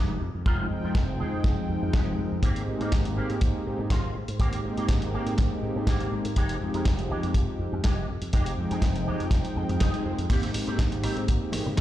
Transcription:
Already playing: F1 G#3 D#4 G4
0.22 F2
0.35 F2
0.45 F1 F3 G#3 C4 D#4 F4 G5, kick
0.71 F2
0.83 F2 G#3 D#4 F4
0.95 F1, kick, snare
1.08 muted clean electric guitar stroke
1.19 F2 G#3 D#4 G#4
1.33 F2
1.44 F1, kick, snare
1.57 muted clean electric guitar stroke
1.70 F2
1.82 F2, muted clean electric guitar stroke
1.93 F1 G#3 D#4 G4, kick, snare
2.18 F2 F3 G#3 C4 D#4 A#4
2.32 F2
2.42 G#1 G#3 A#3 C4 D#4 G4, kick, closed hi-hat
2.56 closed hi-hat
2.68 G#2
2.80 G#2 A#3 C4 D#4, closed hi-hat
2.92 G#1, kick, snare, closed hi-hat
3.05 muted clean electric guitar stroke, closed hi-hat
3.16 G#2 A#3 C4 G4
3.30 G#2, closed hi-hat
3.41 G#1, kick, closed hi-hat
3.54 muted clean electric guitar stroke
3.66 G#2 G#3 A#3 C4 D#4 G4
3.78 G#2, muted clean electric guitar stroke
3.90 G#1 A#3 C4 F4, kick, snare, closed hi-hat
4.15 G#2
4.28 G#2, closed hi-hat
4.39 G#1 G#3 A#3 C4 D#4 G4, kick, closed hi-hat
4.53 closed hi-hat
4.64 G#2
4.77 G#2 A#3 C4 G4, closed hi-hat
4.88 G#1, kick, snare, closed hi-hat
5.02 muted clean electric guitar stroke, closed hi-hat
5.13 G#2 A#3 C4 G4
5.26 G#2, closed hi-hat
5.38 G#1, kick, snare, closed hi-hat
5.51 muted clean electric guitar stroke
5.63 G#2
5.76 G#2, muted clean electric guitar stroke
5.87 G#1 A#3 C4 G4, kick, snare, closed hi-hat
6.00 closed hi-hat
6.12 G#2 G#3 A#3 C4 D#4 A#4
6.25 G#2, closed hi-hat
6.36 F1 F3 G#3 C4 D#4 G4, kick, closed hi-hat
6.49 closed hi-hat
6.61 F2
6.74 F2 G#3 D#4 A#4, closed hi-hat
6.85 F1, kick, snare, closed hi-hat
6.99 muted clean electric guitar stroke, closed hi-hat
7.10 F2 G#3 D#4 G4
7.23 F2, closed hi-hat
7.34 F1, kick, closed hi-hat
7.48 muted clean electric guitar stroke
7.59 F2 F3 G#3 C4 D#4 G4
7.72 F2, muted clean electric guitar stroke
7.84 F1 G#3 D#4 G4, kick, snare, closed hi-hat
8.08 F2
8.22 F2, closed hi-hat
8.32 F1 F3 G#3 C4 D#4 G4 G5, kick, closed hi-hat
8.46 closed hi-hat
8.58 F2
8.71 F2 G#3 D#4 G#4, closed hi-hat
8.82 F1, kick, snare, closed hi-hat
8.95 muted clean electric guitar stroke, closed hi-hat
9.06 F2 G#3 D#4 G4
9.20 F2, closed hi-hat
9.31 F1, kick, snare, closed hi-hat, swell
9.44 muted clean electric guitar stroke, closed hi-hat
9.56 F2 G5
9.69 F2, muted clean electric guitar stroke, closed hi-hat
9.80 F1 G#3 D#4 G4 D#5, kick, snare, closed hi-hat
9.94 closed hi-hat
10.05 F2 F3 G#3 C4 D#4 A#4 C5
10.19 F2, closed hi-hat
10.29 G#1 G#3 A#3 C4 D#4 G4, kick, closed hi-hat, crash
10.43 closed hi-hat
10.54 G#2, open hi-hat
10.67 G#2 A#3 C4 G4, closed hi-hat
10.79 G#1, kick, snare, closed hi-hat
10.91 muted clean electric guitar stroke, closed hi-hat
11.03 G#2 A#3 C4 G4, cross-stick, open hi-hat
11.17 G#2, closed hi-hat
11.28 G#1, kick, closed hi-hat
11.41 muted clean electric guitar stroke
11.52 G#2 G#3 A#3 C4 D#4 G4, cross-stick, open hi-hat, low conga
11.65 G#2, muted clean electric guitar stroke, high conga
11.77 A#3 C4 A#4, snare, closed hi-hat

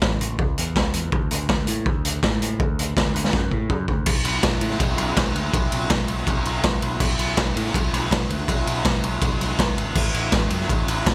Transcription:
0.02 A1, kick, snare
0.20 A1, closed hi-hat
0.39 C#2, kick
0.58 E2, closed hi-hat
0.76 C#2, kick, snare
0.93 E2, closed hi-hat
1.12 D2, kick
1.31 D2, closed hi-hat
1.49 D2, kick, snare
1.67 A2, closed hi-hat
1.86 D2, kick
2.05 closed hi-hat
2.23 A2, kick, snare
2.41 A2, closed hi-hat
2.60 D2, kick
2.79 closed hi-hat
2.97 D2, kick, snare
3.15 D2, closed hi-hat
3.24 snare
3.33 F#2, kick, snare
3.51 A2, kick
3.70 F#2, kick
3.88 D2, kick
4.06 B1, kick, crash
4.24 B1, ride
4.43 B1, kick, snare, ride
4.61 A2, ride
4.71 snare
4.80 B1, kick, ride
4.98 B1, ride
5.17 B1, kick, snare, ride
5.34 D2, ride
5.53 B1, kick, ride
5.72 B1, ride
5.90 B1, kick, snare, ride
6.08 B1, ride
6.27 B1, kick, ride
6.45 B1, ride
6.64 B1, kick, snare, ride
6.82 B1, ride
7.00 B1, kick, crash
7.19 B1, ride
7.37 B1, kick, snare, ride
7.56 A2, ride
7.66 snare
7.74 B1, kick, ride
7.93 B1, snare, ride
8.11 B1, kick, snare, ride
8.30 D2, ride
8.48 B1, kick, ride
8.67 B1, ride
8.85 B1, kick, snare, ride
9.04 B1, ride
9.22 B1, kick, ride
9.41 B1, snare, ride
9.59 B1, kick, snare, ride
9.77 G#1, ride
9.95 A1, kick, crash
10.14 A1, ride
10.32 A1, kick, snare, ride
10.50 F#2, ride
10.61 snare
10.69 A1, kick, ride
10.87 A1, ride
11.06 A1, kick, snare, ride

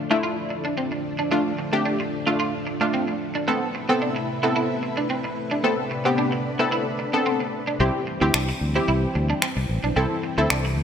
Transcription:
Already playing: D3 F3 A3 D4
0.10 A3 D4 E4 F4
0.23 F4
0.50 muted clean electric guitar stroke
0.65 D4
0.77 C4
0.92 muted clean electric guitar stroke
1.19 D4
1.31 A3 D4 F4
1.59 muted clean electric guitar stroke
1.73 A3 C4 D4 G4
1.86 D4
2.00 muted clean electric guitar stroke
2.26 A3 D4 F4
2.40 F4
2.67 muted clean electric guitar stroke
2.81 A3 D4 F4
2.94 C4
3.08 muted clean electric guitar stroke
3.35 D4
3.47 C3 A3 B3 C4 E4 A4 B4
3.75 muted clean electric guitar stroke
3.89 B3 C4 A4
4.02 D4
4.16 muted clean electric guitar stroke
4.43 B3 C4 E4 A4
4.56 E4
4.83 muted clean electric guitar stroke
4.97 D4
5.10 C4
5.24 muted clean electric guitar stroke
5.51 D4
5.64 A3 B3 C4 D4 A4
5.91 muted clean electric guitar stroke
6.05 B3 C4 G4
6.18 D4
6.32 muted clean electric guitar stroke
6.59 B3 C4 E4 A4
6.72 E4
6.99 muted clean electric guitar stroke
7.13 B3 C4 D4 A4
7.26 C4
7.40 muted clean electric guitar stroke
7.67 D4
7.80 C2 E3 G3 C4 E4 G4
8.07 muted clean electric guitar stroke
8.21 D2 C4 E4 G4
8.34 C2 D4, finger snap
8.49 muted clean electric guitar stroke
8.61 D2
8.75 C4 E4 G4
8.88 C2 E4
9.15 D2, muted clean electric guitar stroke
9.30 D4
9.42 C4, finger snap
9.57 C2, muted clean electric guitar stroke
9.69 A1
9.84 B1 D4
9.96 C2 C4 E4 A4
10.23 muted clean electric guitar stroke
10.38 D2 C4 E4 A4
10.50 C2 D4, finger snap
10.65 muted clean electric guitar stroke
10.77 D2

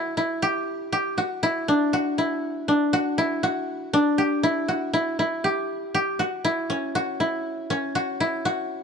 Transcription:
Already playing: E4 F#4 A4
0.17 E4
0.42 G4
0.93 G4
1.18 F#4
1.43 E4
1.68 D4
1.93 F#4
2.18 E4
2.68 D4
2.93 F#4
3.18 E4
3.43 F#4
3.93 D4
4.18 G4
4.43 E4
4.68 F#4
4.93 E4
5.19 E4
5.44 G4
5.95 G4
6.19 F#4
6.45 E4
6.70 C#4
6.95 F#4
7.20 E4
7.70 C#4
7.95 F#4
8.20 E4
8.45 F#4

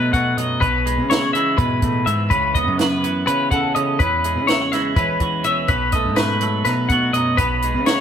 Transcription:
Already playing: B2 F#3 A3 D#4 F#4 B4
0.13 B2 F#4 F#5, kick, closed hi-hat
0.37 F#2 B2 D#4 D#5, closed hi-hat
0.61 B1 B2 B4, kick, closed hi-hat
0.86 G#3, closed hi-hat
0.98 C#3
1.10 E4 C#5, snare, closed hi-hat
1.22 F#4
1.33 E3 G#3 E5, closed hi-hat
1.58 G#2 B2 B4, kick, closed hi-hat
1.82 A2 B2, kick, closed hi-hat
2.06 G#2 B2 E5, closed hi-hat
2.30 C#2 C#3 B4, kick, closed hi-hat
2.55 B3 D#5, kick, closed hi-hat
2.68 F#2
2.78 F#4 B4, snare, closed hi-hat
3.03 E3 B3, closed hi-hat
3.27 C#3 C#4 B4, closed hi-hat
3.51 C#3 A4 F#5, kick, closed hi-hat
3.75 C#3 C#4 D#5, closed hi-hat
3.99 E2 B4, kick, closed hi-hat
4.24 G#3, closed hi-hat
4.36 C#3
4.47 E4 C#5, snare, closed hi-hat
4.61 F#4
4.72 E3 G#3 E5, snare, closed hi-hat
4.96 E3 C#4 B4, kick, closed hi-hat
5.20 E3 F#4, kick, closed hi-hat
5.44 B2 E3 C#4 E5, closed hi-hat
5.68 B1 B2 B4, kick, closed hi-hat
5.92 A3 D#5, kick, closed hi-hat
6.05 G#2
6.16 F#4 B4, snare, closed hi-hat
6.41 F#3 A3, closed hi-hat
6.65 B2 D#4 B4, snare, closed hi-hat
6.89 B2 F#4 F#5, kick, closed hi-hat
7.13 F#2 B2 D#4 D#5, closed hi-hat
7.37 B1 B2 B4, kick, closed hi-hat
7.62 G#3, closed hi-hat
7.75 C#3
7.86 F#4 C#5, snare, closed hi-hat

